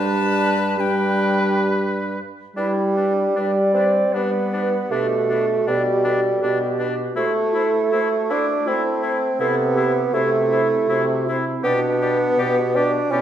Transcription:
Already playing: bassoon G2, french horn G3, clarinet D4, oboe B4, flute A5
0.78 french horn G3, clarinet D4, oboe B4, flute G5
2.55 french horn G3, bassoon G3, oboe D4, clarinet E4, flute B4
2.97 clarinet D4, oboe D4, flute B4
3.36 french horn G3, oboe D4, flute B4, clarinet D5
3.74 bassoon C4, oboe D4, flute B4
4.13 french horn G3, bassoon B3, oboe D4, flute B4, clarinet B4
4.51 oboe D4, flute B4
4.91 french horn B2, bassoon A3, oboe D4, clarinet G4, flute B4
5.29 oboe D4, clarinet F#4, flute B4
5.67 french horn B2, bassoon G3, oboe D4, clarinet G4, flute B4
6.04 oboe D4, clarinet A4, flute B4
6.41 french horn B2, oboe D4, clarinet G4, flute B4
6.79 oboe D4, flute B4
7.16 bassoon A3, french horn A3, oboe E4, clarinet F#4, flute C5
7.53 clarinet E4, oboe E4, flute C5
7.92 french horn A3, oboe E4, clarinet F#4, flute C5
8.30 bassoon D4, oboe E4, flute C5
8.66 french horn A3, bassoon C4, clarinet E4, oboe E4, flute C5
9.02 oboe E4, flute C5
9.39 french horn C3, bassoon B3, oboe E4, clarinet A4, flute C5
9.75 oboe E4, clarinet G4, flute C5
10.12 french horn C3, bassoon A3, oboe E4, clarinet F#4, flute C5
10.50 clarinet E4, oboe E4, flute C5
10.88 french horn C3, oboe E4, clarinet F#4, flute C5
11.26 clarinet E4, oboe E4, flute C5
11.64 french horn B2, bassoon B3, clarinet D4, oboe G4, flute D5
12.01 oboe G4, flute D5
12.38 french horn B2, oboe G4, clarinet G4, flute D5
12.74 bassoon D4, clarinet F#4, oboe G4, flute D5
13.10 french horn B2, bassoon C#4, clarinet E4, oboe G4, flute D5

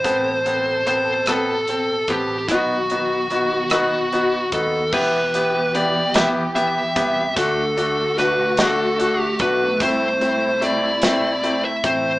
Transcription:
Already playing: string section C3, lead electric guitar C5
0.04 fretless electric bass A1, string section B2 A4, grand piano B3 C4 A4, kick, closed hi-hat
0.46 grand piano B3 C4 A4, closed hi-hat
0.87 grand piano B3 C4 A4, lead electric guitar C5, closed hi-hat
1.26 grand piano B3 C4 A4, lead electric guitar A4, cross-stick, closed hi-hat
1.68 grand piano C4 A4, closed hi-hat
2.08 fretless electric bass A1, grand piano B3 C4 A4, lead electric guitar G4, kick, closed hi-hat
2.48 fretless electric bass B1, string section D#3 B3 F#4, grand piano B3 D#4 F#4, lead electric guitar F#4, kick, closed hi-hat
2.90 grand piano B3 D#4 F#4, closed hi-hat
3.30 grand piano B3 D#4 F#4, cross-stick, closed hi-hat
3.70 grand piano B3 D#4 F#4, cross-stick, closed hi-hat
4.12 grand piano B3 D#4 F#4, closed hi-hat
4.52 fretless electric bass D#2, grand piano B3 D#4 F#4, lead electric guitar A4, kick, closed hi-hat
4.92 fretless electric bass E1, string section E3 B3 G4, grand piano B3 E4 G4, lead electric guitar B4, kick, crash
5.34 grand piano B3 E4 G4, closed hi-hat
5.75 grand piano B3 E4 G4, lead electric guitar D5, closed hi-hat
6.14 grand piano B3 E4 G4, lead electric guitar E5, snare, closed hi-hat
6.55 grand piano B3 E4 G4, lead electric guitar E5, closed hi-hat
6.96 fretless electric bass C2, grand piano B3 E4 G4, kick, closed hi-hat
7.36 fretless electric bass D2, string section D3 A3 F#4, grand piano A3 D4 F#4, lead electric guitar A4, kick, closed hi-hat
7.77 grand piano A3 D4 F#4, closed hi-hat
8.18 grand piano A3 D4 F#4, lead electric guitar B4, snare, closed hi-hat
8.57 grand piano A3 D4 F#4, lead electric guitar A4, snare, closed hi-hat
8.98 grand piano A3 D4 F#4, closed hi-hat
9.20 lead electric guitar G4
9.39 fretless electric bass B1, grand piano A3 D4 F#4, lead electric guitar B4, kick, closed hi-hat
9.80 fretless electric bass C2, string section C3 E4, grand piano A3 C4 E4, lead electric guitar C5, kick, closed hi-hat
10.21 grand piano A3 C4 E4, closed hi-hat
10.61 grand piano A3 C4 E4, lead electric guitar D5, closed hi-hat
11.02 grand piano A3 C4 E4, snare, closed hi-hat
11.43 grand piano A3 C4 E4, closed hi-hat
11.65 lead electric guitar E5
11.84 fretless electric bass A1, grand piano A3 C4 E4, lead electric guitar C5, kick, closed hi-hat

